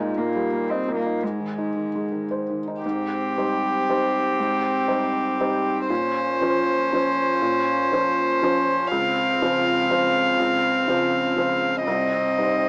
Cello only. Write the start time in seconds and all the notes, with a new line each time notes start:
Already playing: G#3
0.17 A#3
0.70 C4
0.96 A#3
1.23 G#3
2.84 C4
5.90 C#4
8.91 C4
11.86 C4